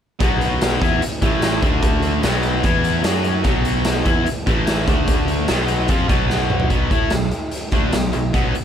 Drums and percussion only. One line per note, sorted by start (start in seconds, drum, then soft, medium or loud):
0.20 kick loud
0.20 closed hi-hat medium
0.41 closed hi-hat medium
0.61 snare loud
0.61 closed hi-hat medium
0.61 tambourine loud
0.82 kick medium
0.82 closed hi-hat medium
1.02 closed hi-hat medium
1.22 kick loud
1.22 closed hi-hat medium
1.42 snare loud
1.42 closed hi-hat loud
1.42 tambourine loud
1.63 kick loud
1.63 closed hi-hat medium
1.82 kick loud
1.82 closed hi-hat medium
2.03 closed hi-hat medium
2.23 snare loud
2.23 closed hi-hat medium
2.23 tambourine loud
2.43 closed hi-hat medium
2.63 kick loud
2.63 closed hi-hat medium
2.84 closed hi-hat medium
3.04 snare loud
3.04 closed hi-hat medium
3.04 tambourine loud
3.24 closed hi-hat medium
3.44 kick loud
3.44 closed hi-hat medium
3.65 closed hi-hat medium
3.85 snare loud
3.85 closed hi-hat medium
3.85 tambourine loud
4.06 kick loud
4.06 closed hi-hat medium
4.26 closed hi-hat medium
4.47 kick loud
4.47 closed hi-hat medium
4.67 snare loud
4.67 closed hi-hat medium
4.67 tambourine loud
4.88 kick loud
4.88 closed hi-hat medium
5.07 kick loud
5.07 closed hi-hat medium
5.28 closed hi-hat medium
5.48 snare loud
5.48 closed hi-hat medium
5.48 tambourine loud
5.68 closed hi-hat medium
5.88 kick loud
5.88 closed hi-hat medium
6.09 kick loud
6.09 closed hi-hat medium
6.30 snare medium
6.50 mid tom medium
6.60 floor tom medium
6.70 kick loud
6.70 closed hi-hat medium
6.91 kick loud
6.91 closed hi-hat medium
7.10 snare loud
7.10 closed hi-hat medium
7.10 tambourine loud
7.31 closed hi-hat medium
7.51 closed hi-hat medium
7.72 kick loud
7.72 closed hi-hat medium
7.93 snare loud
7.93 closed hi-hat medium
7.93 tambourine loud
8.13 closed hi-hat medium
8.34 kick loud
8.34 closed hi-hat medium
8.55 closed hi-hat medium